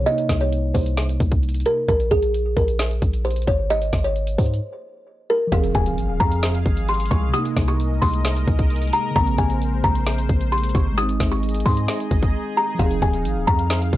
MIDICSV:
0, 0, Header, 1, 7, 480
1, 0, Start_track
1, 0, Key_signature, -4, "minor"
1, 0, Tempo, 454545
1, 70, Time_signature, 4, 2, 24, 8
1, 14754, End_track
2, 0, Start_track
2, 0, Title_t, "Kalimba"
2, 0, Program_c, 0, 108
2, 66, Note_on_c, 0, 75, 124
2, 407, Note_off_c, 0, 75, 0
2, 433, Note_on_c, 0, 73, 71
2, 770, Note_off_c, 0, 73, 0
2, 785, Note_on_c, 0, 72, 73
2, 1705, Note_off_c, 0, 72, 0
2, 1753, Note_on_c, 0, 70, 82
2, 1936, Note_off_c, 0, 70, 0
2, 1990, Note_on_c, 0, 70, 92
2, 2174, Note_off_c, 0, 70, 0
2, 2230, Note_on_c, 0, 68, 93
2, 2681, Note_off_c, 0, 68, 0
2, 2710, Note_on_c, 0, 70, 83
2, 3388, Note_off_c, 0, 70, 0
2, 3429, Note_on_c, 0, 72, 78
2, 3614, Note_off_c, 0, 72, 0
2, 3671, Note_on_c, 0, 73, 76
2, 3854, Note_off_c, 0, 73, 0
2, 3912, Note_on_c, 0, 75, 119
2, 4249, Note_off_c, 0, 75, 0
2, 4270, Note_on_c, 0, 73, 72
2, 4608, Note_off_c, 0, 73, 0
2, 4629, Note_on_c, 0, 72, 76
2, 5547, Note_off_c, 0, 72, 0
2, 5596, Note_on_c, 0, 70, 90
2, 5778, Note_off_c, 0, 70, 0
2, 5833, Note_on_c, 0, 77, 109
2, 6016, Note_off_c, 0, 77, 0
2, 6073, Note_on_c, 0, 80, 85
2, 6523, Note_off_c, 0, 80, 0
2, 6547, Note_on_c, 0, 82, 88
2, 7227, Note_off_c, 0, 82, 0
2, 7274, Note_on_c, 0, 84, 78
2, 7456, Note_off_c, 0, 84, 0
2, 7507, Note_on_c, 0, 85, 87
2, 7692, Note_off_c, 0, 85, 0
2, 7747, Note_on_c, 0, 87, 123
2, 8087, Note_off_c, 0, 87, 0
2, 8112, Note_on_c, 0, 85, 76
2, 8449, Note_off_c, 0, 85, 0
2, 8465, Note_on_c, 0, 84, 79
2, 9386, Note_off_c, 0, 84, 0
2, 9433, Note_on_c, 0, 82, 84
2, 9616, Note_off_c, 0, 82, 0
2, 9671, Note_on_c, 0, 82, 96
2, 9855, Note_off_c, 0, 82, 0
2, 9910, Note_on_c, 0, 80, 95
2, 10362, Note_off_c, 0, 80, 0
2, 10391, Note_on_c, 0, 82, 83
2, 11068, Note_off_c, 0, 82, 0
2, 11110, Note_on_c, 0, 84, 80
2, 11294, Note_off_c, 0, 84, 0
2, 11351, Note_on_c, 0, 85, 74
2, 11534, Note_off_c, 0, 85, 0
2, 11592, Note_on_c, 0, 87, 122
2, 11929, Note_off_c, 0, 87, 0
2, 11950, Note_on_c, 0, 85, 73
2, 12288, Note_off_c, 0, 85, 0
2, 12309, Note_on_c, 0, 84, 74
2, 13227, Note_off_c, 0, 84, 0
2, 13276, Note_on_c, 0, 82, 93
2, 13457, Note_off_c, 0, 82, 0
2, 13512, Note_on_c, 0, 77, 105
2, 13695, Note_off_c, 0, 77, 0
2, 13753, Note_on_c, 0, 80, 82
2, 14203, Note_off_c, 0, 80, 0
2, 14227, Note_on_c, 0, 82, 90
2, 14754, Note_off_c, 0, 82, 0
2, 14754, End_track
3, 0, Start_track
3, 0, Title_t, "Analog synth pad"
3, 0, Program_c, 1, 89
3, 5829, Note_on_c, 1, 56, 83
3, 5829, Note_on_c, 1, 68, 72
3, 5829, Note_on_c, 1, 77, 88
3, 7731, Note_off_c, 1, 68, 0
3, 7731, Note_off_c, 1, 77, 0
3, 7750, Note_on_c, 1, 70, 73
3, 7751, Note_on_c, 1, 75, 90
3, 9651, Note_off_c, 1, 75, 0
3, 9671, Note_on_c, 1, 72, 91
3, 11548, Note_off_c, 1, 56, 0
3, 11552, Note_off_c, 1, 70, 0
3, 11571, Note_off_c, 1, 72, 0
3, 11590, Note_on_c, 1, 63, 81
3, 11590, Note_on_c, 1, 68, 75
3, 11590, Note_on_c, 1, 75, 90
3, 13491, Note_off_c, 1, 75, 0
3, 13510, Note_on_c, 1, 77, 89
3, 14754, Note_off_c, 1, 63, 0
3, 14754, Note_off_c, 1, 68, 0
3, 14754, Note_off_c, 1, 77, 0
3, 14754, End_track
4, 0, Start_track
4, 0, Title_t, "Tine electric piano"
4, 0, Program_c, 2, 4
4, 0, Control_c, 2, 64, 127
4, 16, Note_on_c, 2, 48, 65
4, 68, Note_on_c, 2, 58, 60
4, 85, Control_c, 2, 64, 0
4, 121, Note_on_c, 2, 63, 78
4, 285, Control_c, 2, 64, 127
4, 1924, Note_off_c, 2, 48, 0
4, 1951, Note_off_c, 2, 58, 0
4, 1978, Note_off_c, 2, 63, 0
4, 2003, Control_c, 2, 64, 0
4, 5779, Note_on_c, 2, 53, 77
4, 5832, Note_on_c, 2, 60, 61
4, 5884, Note_on_c, 2, 68, 77
4, 6043, Control_c, 2, 64, 127
4, 7686, Note_off_c, 2, 53, 0
4, 7696, Note_on_c, 2, 48, 67
4, 7713, Note_off_c, 2, 60, 0
4, 7739, Note_off_c, 2, 68, 0
4, 7748, Note_on_c, 2, 58, 63
4, 7764, Control_c, 2, 64, 0
4, 7800, Note_on_c, 2, 63, 79
4, 7960, Control_c, 2, 64, 127
4, 9604, Note_off_c, 2, 48, 0
4, 9619, Note_on_c, 2, 49, 75
4, 9631, Note_off_c, 2, 58, 0
4, 9657, Note_off_c, 2, 63, 0
4, 9671, Note_on_c, 2, 58, 70
4, 9683, Control_c, 2, 64, 0
4, 9724, Note_on_c, 2, 60, 77
4, 9850, Control_c, 2, 64, 127
4, 11526, Note_off_c, 2, 49, 0
4, 11540, Note_on_c, 2, 56, 70
4, 11552, Note_off_c, 2, 58, 0
4, 11579, Note_off_c, 2, 60, 0
4, 11593, Note_on_c, 2, 63, 61
4, 11604, Control_c, 2, 64, 0
4, 11645, Note_on_c, 2, 60, 73
4, 11788, Control_c, 2, 64, 127
4, 13446, Note_off_c, 2, 56, 0
4, 13459, Note_on_c, 2, 53, 77
4, 13473, Note_off_c, 2, 63, 0
4, 13500, Note_off_c, 2, 60, 0
4, 13512, Note_on_c, 2, 60, 62
4, 13526, Control_c, 2, 64, 0
4, 13564, Note_on_c, 2, 68, 80
4, 13728, Control_c, 2, 64, 127
4, 14754, Note_off_c, 2, 53, 0
4, 14754, Note_off_c, 2, 60, 0
4, 14754, Note_off_c, 2, 68, 0
4, 14754, End_track
5, 0, Start_track
5, 0, Title_t, "808-style bass"
5, 0, Program_c, 3, 38
5, 309, Note_on_c, 3, 36, 101
5, 771, Note_off_c, 3, 36, 0
5, 790, Note_on_c, 3, 36, 106
5, 1251, Note_off_c, 3, 36, 0
5, 1270, Note_on_c, 3, 36, 106
5, 1731, Note_off_c, 3, 36, 0
5, 1990, Note_on_c, 3, 34, 114
5, 2221, Note_off_c, 3, 34, 0
5, 2229, Note_on_c, 3, 34, 104
5, 2691, Note_off_c, 3, 34, 0
5, 2710, Note_on_c, 3, 34, 100
5, 3171, Note_off_c, 3, 34, 0
5, 3190, Note_on_c, 3, 34, 107
5, 3651, Note_off_c, 3, 34, 0
5, 3669, Note_on_c, 3, 32, 102
5, 4130, Note_off_c, 3, 32, 0
5, 4149, Note_on_c, 3, 32, 105
5, 4611, Note_off_c, 3, 32, 0
5, 4630, Note_on_c, 3, 44, 106
5, 4861, Note_off_c, 3, 44, 0
5, 5830, Note_on_c, 3, 29, 113
5, 6061, Note_off_c, 3, 29, 0
5, 6070, Note_on_c, 3, 27, 107
5, 6311, Note_on_c, 3, 32, 102
5, 6327, Note_off_c, 3, 27, 0
5, 6431, Note_on_c, 3, 27, 102
5, 6446, Note_off_c, 3, 32, 0
5, 6544, Note_off_c, 3, 27, 0
5, 6550, Note_on_c, 3, 41, 107
5, 7011, Note_off_c, 3, 41, 0
5, 7030, Note_on_c, 3, 32, 105
5, 7491, Note_off_c, 3, 32, 0
5, 7509, Note_on_c, 3, 36, 110
5, 7740, Note_off_c, 3, 36, 0
5, 7989, Note_on_c, 3, 36, 105
5, 8451, Note_off_c, 3, 36, 0
5, 8470, Note_on_c, 3, 36, 106
5, 8931, Note_off_c, 3, 36, 0
5, 8950, Note_on_c, 3, 36, 109
5, 9411, Note_off_c, 3, 36, 0
5, 9671, Note_on_c, 3, 34, 116
5, 9901, Note_off_c, 3, 34, 0
5, 9910, Note_on_c, 3, 34, 107
5, 10371, Note_off_c, 3, 34, 0
5, 10391, Note_on_c, 3, 34, 106
5, 10851, Note_off_c, 3, 34, 0
5, 10870, Note_on_c, 3, 34, 106
5, 11331, Note_off_c, 3, 34, 0
5, 11349, Note_on_c, 3, 32, 105
5, 11811, Note_off_c, 3, 32, 0
5, 11829, Note_on_c, 3, 32, 108
5, 12290, Note_off_c, 3, 32, 0
5, 12310, Note_on_c, 3, 44, 104
5, 12541, Note_off_c, 3, 44, 0
5, 12790, Note_on_c, 3, 32, 111
5, 13020, Note_off_c, 3, 32, 0
5, 13510, Note_on_c, 3, 29, 112
5, 13741, Note_off_c, 3, 29, 0
5, 13749, Note_on_c, 3, 27, 108
5, 13990, Note_on_c, 3, 32, 101
5, 14006, Note_off_c, 3, 27, 0
5, 14110, Note_on_c, 3, 27, 102
5, 14126, Note_off_c, 3, 32, 0
5, 14224, Note_off_c, 3, 27, 0
5, 14230, Note_on_c, 3, 41, 105
5, 14691, Note_off_c, 3, 41, 0
5, 14709, Note_on_c, 3, 32, 110
5, 14754, Note_off_c, 3, 32, 0
5, 14754, End_track
6, 0, Start_track
6, 0, Title_t, "Impact"
6, 0, Program_c, 4, 103
6, 5830, Note_on_c, 4, 60, 86
6, 7750, Note_off_c, 4, 60, 0
6, 14754, End_track
7, 0, Start_track
7, 0, Title_t, "Drums"
7, 70, Note_on_c, 9, 42, 77
7, 176, Note_off_c, 9, 42, 0
7, 190, Note_on_c, 9, 42, 45
7, 296, Note_off_c, 9, 42, 0
7, 309, Note_on_c, 9, 36, 96
7, 309, Note_on_c, 9, 42, 82
7, 310, Note_on_c, 9, 38, 95
7, 414, Note_off_c, 9, 42, 0
7, 415, Note_off_c, 9, 36, 0
7, 416, Note_off_c, 9, 38, 0
7, 429, Note_on_c, 9, 42, 49
7, 535, Note_off_c, 9, 42, 0
7, 554, Note_on_c, 9, 42, 69
7, 660, Note_off_c, 9, 42, 0
7, 790, Note_on_c, 9, 36, 97
7, 791, Note_on_c, 9, 46, 73
7, 896, Note_off_c, 9, 36, 0
7, 897, Note_off_c, 9, 46, 0
7, 910, Note_on_c, 9, 42, 61
7, 1015, Note_off_c, 9, 42, 0
7, 1029, Note_on_c, 9, 38, 115
7, 1032, Note_on_c, 9, 42, 89
7, 1135, Note_off_c, 9, 38, 0
7, 1138, Note_off_c, 9, 42, 0
7, 1153, Note_on_c, 9, 42, 60
7, 1259, Note_off_c, 9, 42, 0
7, 1270, Note_on_c, 9, 36, 100
7, 1271, Note_on_c, 9, 42, 69
7, 1375, Note_off_c, 9, 36, 0
7, 1376, Note_off_c, 9, 42, 0
7, 1390, Note_on_c, 9, 36, 97
7, 1390, Note_on_c, 9, 42, 58
7, 1495, Note_off_c, 9, 42, 0
7, 1496, Note_off_c, 9, 36, 0
7, 1510, Note_on_c, 9, 42, 38
7, 1570, Note_off_c, 9, 42, 0
7, 1570, Note_on_c, 9, 42, 48
7, 1630, Note_off_c, 9, 42, 0
7, 1630, Note_on_c, 9, 42, 60
7, 1690, Note_off_c, 9, 42, 0
7, 1690, Note_on_c, 9, 42, 66
7, 1749, Note_off_c, 9, 42, 0
7, 1749, Note_on_c, 9, 42, 89
7, 1855, Note_off_c, 9, 42, 0
7, 1990, Note_on_c, 9, 36, 108
7, 1991, Note_on_c, 9, 42, 74
7, 2096, Note_off_c, 9, 36, 0
7, 2096, Note_off_c, 9, 42, 0
7, 2110, Note_on_c, 9, 42, 46
7, 2216, Note_off_c, 9, 42, 0
7, 2229, Note_on_c, 9, 36, 91
7, 2229, Note_on_c, 9, 42, 87
7, 2334, Note_off_c, 9, 42, 0
7, 2335, Note_off_c, 9, 36, 0
7, 2349, Note_on_c, 9, 42, 51
7, 2455, Note_off_c, 9, 42, 0
7, 2474, Note_on_c, 9, 42, 69
7, 2580, Note_off_c, 9, 42, 0
7, 2710, Note_on_c, 9, 36, 97
7, 2711, Note_on_c, 9, 42, 67
7, 2816, Note_off_c, 9, 36, 0
7, 2817, Note_off_c, 9, 42, 0
7, 2830, Note_on_c, 9, 42, 63
7, 2935, Note_off_c, 9, 42, 0
7, 2949, Note_on_c, 9, 38, 120
7, 2952, Note_on_c, 9, 42, 91
7, 3055, Note_off_c, 9, 38, 0
7, 3058, Note_off_c, 9, 42, 0
7, 3073, Note_on_c, 9, 42, 57
7, 3179, Note_off_c, 9, 42, 0
7, 3190, Note_on_c, 9, 36, 101
7, 3191, Note_on_c, 9, 42, 72
7, 3295, Note_off_c, 9, 36, 0
7, 3296, Note_off_c, 9, 42, 0
7, 3310, Note_on_c, 9, 42, 60
7, 3415, Note_off_c, 9, 42, 0
7, 3430, Note_on_c, 9, 42, 40
7, 3490, Note_off_c, 9, 42, 0
7, 3490, Note_on_c, 9, 42, 47
7, 3550, Note_off_c, 9, 42, 0
7, 3550, Note_on_c, 9, 42, 57
7, 3610, Note_off_c, 9, 42, 0
7, 3610, Note_on_c, 9, 42, 64
7, 3669, Note_off_c, 9, 42, 0
7, 3669, Note_on_c, 9, 36, 99
7, 3669, Note_on_c, 9, 42, 92
7, 3774, Note_off_c, 9, 42, 0
7, 3775, Note_off_c, 9, 36, 0
7, 3911, Note_on_c, 9, 42, 74
7, 4016, Note_off_c, 9, 42, 0
7, 4030, Note_on_c, 9, 42, 45
7, 4136, Note_off_c, 9, 42, 0
7, 4148, Note_on_c, 9, 42, 83
7, 4149, Note_on_c, 9, 36, 92
7, 4150, Note_on_c, 9, 38, 96
7, 4254, Note_off_c, 9, 42, 0
7, 4255, Note_off_c, 9, 36, 0
7, 4255, Note_off_c, 9, 38, 0
7, 4269, Note_on_c, 9, 42, 51
7, 4375, Note_off_c, 9, 42, 0
7, 4390, Note_on_c, 9, 42, 43
7, 4496, Note_off_c, 9, 42, 0
7, 4510, Note_on_c, 9, 42, 67
7, 4616, Note_off_c, 9, 42, 0
7, 4630, Note_on_c, 9, 36, 95
7, 4630, Note_on_c, 9, 42, 55
7, 4631, Note_on_c, 9, 46, 73
7, 4710, Note_off_c, 9, 42, 0
7, 4710, Note_on_c, 9, 42, 57
7, 4736, Note_off_c, 9, 36, 0
7, 4737, Note_off_c, 9, 46, 0
7, 4790, Note_off_c, 9, 42, 0
7, 4790, Note_on_c, 9, 42, 53
7, 4896, Note_off_c, 9, 42, 0
7, 5830, Note_on_c, 9, 36, 109
7, 5831, Note_on_c, 9, 42, 77
7, 5936, Note_off_c, 9, 36, 0
7, 5936, Note_off_c, 9, 42, 0
7, 5951, Note_on_c, 9, 42, 47
7, 6056, Note_off_c, 9, 42, 0
7, 6069, Note_on_c, 9, 36, 98
7, 6069, Note_on_c, 9, 42, 86
7, 6175, Note_off_c, 9, 36, 0
7, 6175, Note_off_c, 9, 42, 0
7, 6190, Note_on_c, 9, 42, 52
7, 6295, Note_off_c, 9, 42, 0
7, 6315, Note_on_c, 9, 42, 69
7, 6420, Note_off_c, 9, 42, 0
7, 6550, Note_on_c, 9, 36, 96
7, 6552, Note_on_c, 9, 42, 66
7, 6656, Note_off_c, 9, 36, 0
7, 6657, Note_off_c, 9, 42, 0
7, 6670, Note_on_c, 9, 42, 63
7, 6775, Note_off_c, 9, 42, 0
7, 6789, Note_on_c, 9, 38, 116
7, 6792, Note_on_c, 9, 42, 96
7, 6895, Note_off_c, 9, 38, 0
7, 6898, Note_off_c, 9, 42, 0
7, 6913, Note_on_c, 9, 42, 59
7, 7019, Note_off_c, 9, 42, 0
7, 7030, Note_on_c, 9, 36, 99
7, 7031, Note_on_c, 9, 42, 72
7, 7135, Note_off_c, 9, 36, 0
7, 7136, Note_off_c, 9, 42, 0
7, 7150, Note_on_c, 9, 42, 62
7, 7255, Note_off_c, 9, 42, 0
7, 7270, Note_on_c, 9, 42, 64
7, 7330, Note_off_c, 9, 42, 0
7, 7330, Note_on_c, 9, 42, 57
7, 7390, Note_off_c, 9, 42, 0
7, 7390, Note_on_c, 9, 42, 48
7, 7450, Note_off_c, 9, 42, 0
7, 7450, Note_on_c, 9, 42, 41
7, 7509, Note_off_c, 9, 42, 0
7, 7509, Note_on_c, 9, 36, 107
7, 7509, Note_on_c, 9, 42, 94
7, 7615, Note_off_c, 9, 36, 0
7, 7615, Note_off_c, 9, 42, 0
7, 7750, Note_on_c, 9, 42, 79
7, 7856, Note_off_c, 9, 42, 0
7, 7870, Note_on_c, 9, 42, 47
7, 7976, Note_off_c, 9, 42, 0
7, 7989, Note_on_c, 9, 36, 96
7, 7989, Note_on_c, 9, 42, 87
7, 7990, Note_on_c, 9, 38, 96
7, 8094, Note_off_c, 9, 42, 0
7, 8095, Note_off_c, 9, 36, 0
7, 8096, Note_off_c, 9, 38, 0
7, 8109, Note_on_c, 9, 42, 53
7, 8215, Note_off_c, 9, 42, 0
7, 8234, Note_on_c, 9, 42, 72
7, 8340, Note_off_c, 9, 42, 0
7, 8470, Note_on_c, 9, 36, 99
7, 8472, Note_on_c, 9, 46, 72
7, 8576, Note_off_c, 9, 36, 0
7, 8577, Note_off_c, 9, 46, 0
7, 8590, Note_on_c, 9, 42, 62
7, 8696, Note_off_c, 9, 42, 0
7, 8709, Note_on_c, 9, 38, 119
7, 8712, Note_on_c, 9, 42, 96
7, 8815, Note_off_c, 9, 38, 0
7, 8818, Note_off_c, 9, 42, 0
7, 8834, Note_on_c, 9, 42, 59
7, 8939, Note_off_c, 9, 42, 0
7, 8950, Note_on_c, 9, 36, 99
7, 8951, Note_on_c, 9, 42, 73
7, 9056, Note_off_c, 9, 36, 0
7, 9057, Note_off_c, 9, 42, 0
7, 9070, Note_on_c, 9, 42, 62
7, 9071, Note_on_c, 9, 36, 95
7, 9175, Note_off_c, 9, 42, 0
7, 9176, Note_off_c, 9, 36, 0
7, 9190, Note_on_c, 9, 42, 66
7, 9250, Note_off_c, 9, 42, 0
7, 9250, Note_on_c, 9, 42, 55
7, 9310, Note_off_c, 9, 42, 0
7, 9310, Note_on_c, 9, 42, 48
7, 9370, Note_off_c, 9, 42, 0
7, 9370, Note_on_c, 9, 42, 40
7, 9429, Note_off_c, 9, 42, 0
7, 9429, Note_on_c, 9, 42, 93
7, 9535, Note_off_c, 9, 42, 0
7, 9671, Note_on_c, 9, 36, 114
7, 9671, Note_on_c, 9, 42, 79
7, 9776, Note_off_c, 9, 36, 0
7, 9776, Note_off_c, 9, 42, 0
7, 9790, Note_on_c, 9, 42, 46
7, 9896, Note_off_c, 9, 42, 0
7, 9908, Note_on_c, 9, 42, 88
7, 9910, Note_on_c, 9, 36, 94
7, 10014, Note_off_c, 9, 42, 0
7, 10015, Note_off_c, 9, 36, 0
7, 10029, Note_on_c, 9, 42, 50
7, 10135, Note_off_c, 9, 42, 0
7, 10155, Note_on_c, 9, 42, 71
7, 10260, Note_off_c, 9, 42, 0
7, 10390, Note_on_c, 9, 36, 97
7, 10391, Note_on_c, 9, 42, 68
7, 10496, Note_off_c, 9, 36, 0
7, 10497, Note_off_c, 9, 42, 0
7, 10510, Note_on_c, 9, 42, 65
7, 10615, Note_off_c, 9, 42, 0
7, 10629, Note_on_c, 9, 38, 121
7, 10632, Note_on_c, 9, 42, 94
7, 10735, Note_off_c, 9, 38, 0
7, 10738, Note_off_c, 9, 42, 0
7, 10753, Note_on_c, 9, 42, 58
7, 10859, Note_off_c, 9, 42, 0
7, 10870, Note_on_c, 9, 36, 102
7, 10871, Note_on_c, 9, 42, 71
7, 10976, Note_off_c, 9, 36, 0
7, 10977, Note_off_c, 9, 42, 0
7, 10990, Note_on_c, 9, 42, 58
7, 11096, Note_off_c, 9, 42, 0
7, 11110, Note_on_c, 9, 42, 66
7, 11170, Note_off_c, 9, 42, 0
7, 11170, Note_on_c, 9, 42, 56
7, 11230, Note_off_c, 9, 42, 0
7, 11230, Note_on_c, 9, 42, 48
7, 11290, Note_off_c, 9, 42, 0
7, 11290, Note_on_c, 9, 42, 41
7, 11349, Note_off_c, 9, 42, 0
7, 11349, Note_on_c, 9, 36, 108
7, 11349, Note_on_c, 9, 42, 97
7, 11455, Note_off_c, 9, 36, 0
7, 11455, Note_off_c, 9, 42, 0
7, 11591, Note_on_c, 9, 42, 78
7, 11696, Note_off_c, 9, 42, 0
7, 11710, Note_on_c, 9, 42, 46
7, 11816, Note_off_c, 9, 42, 0
7, 11828, Note_on_c, 9, 42, 91
7, 11829, Note_on_c, 9, 36, 90
7, 11830, Note_on_c, 9, 38, 93
7, 11934, Note_off_c, 9, 42, 0
7, 11935, Note_off_c, 9, 36, 0
7, 11935, Note_off_c, 9, 38, 0
7, 11949, Note_on_c, 9, 42, 51
7, 12055, Note_off_c, 9, 42, 0
7, 12070, Note_on_c, 9, 42, 44
7, 12130, Note_off_c, 9, 42, 0
7, 12130, Note_on_c, 9, 42, 53
7, 12190, Note_off_c, 9, 42, 0
7, 12190, Note_on_c, 9, 42, 60
7, 12250, Note_off_c, 9, 42, 0
7, 12250, Note_on_c, 9, 42, 71
7, 12310, Note_on_c, 9, 36, 98
7, 12311, Note_on_c, 9, 46, 73
7, 12356, Note_off_c, 9, 42, 0
7, 12416, Note_off_c, 9, 36, 0
7, 12417, Note_off_c, 9, 46, 0
7, 12430, Note_on_c, 9, 42, 63
7, 12535, Note_off_c, 9, 42, 0
7, 12549, Note_on_c, 9, 38, 116
7, 12552, Note_on_c, 9, 42, 95
7, 12655, Note_off_c, 9, 38, 0
7, 12658, Note_off_c, 9, 42, 0
7, 12673, Note_on_c, 9, 42, 57
7, 12779, Note_off_c, 9, 42, 0
7, 12790, Note_on_c, 9, 36, 103
7, 12791, Note_on_c, 9, 42, 72
7, 12895, Note_off_c, 9, 36, 0
7, 12897, Note_off_c, 9, 42, 0
7, 12910, Note_on_c, 9, 36, 94
7, 12910, Note_on_c, 9, 42, 59
7, 13015, Note_off_c, 9, 42, 0
7, 13016, Note_off_c, 9, 36, 0
7, 13510, Note_on_c, 9, 36, 113
7, 13510, Note_on_c, 9, 42, 80
7, 13616, Note_off_c, 9, 36, 0
7, 13616, Note_off_c, 9, 42, 0
7, 13630, Note_on_c, 9, 42, 46
7, 13736, Note_off_c, 9, 42, 0
7, 13749, Note_on_c, 9, 36, 94
7, 13749, Note_on_c, 9, 42, 88
7, 13854, Note_off_c, 9, 42, 0
7, 13855, Note_off_c, 9, 36, 0
7, 13869, Note_on_c, 9, 42, 51
7, 13975, Note_off_c, 9, 42, 0
7, 13994, Note_on_c, 9, 42, 71
7, 14100, Note_off_c, 9, 42, 0
7, 14230, Note_on_c, 9, 36, 103
7, 14231, Note_on_c, 9, 42, 67
7, 14336, Note_off_c, 9, 36, 0
7, 14337, Note_off_c, 9, 42, 0
7, 14349, Note_on_c, 9, 42, 65
7, 14455, Note_off_c, 9, 42, 0
7, 14469, Note_on_c, 9, 38, 120
7, 14472, Note_on_c, 9, 42, 96
7, 14575, Note_off_c, 9, 38, 0
7, 14578, Note_off_c, 9, 42, 0
7, 14593, Note_on_c, 9, 42, 58
7, 14699, Note_off_c, 9, 42, 0
7, 14710, Note_on_c, 9, 36, 106
7, 14711, Note_on_c, 9, 42, 73
7, 14754, Note_off_c, 9, 36, 0
7, 14754, Note_off_c, 9, 42, 0
7, 14754, End_track
0, 0, End_of_file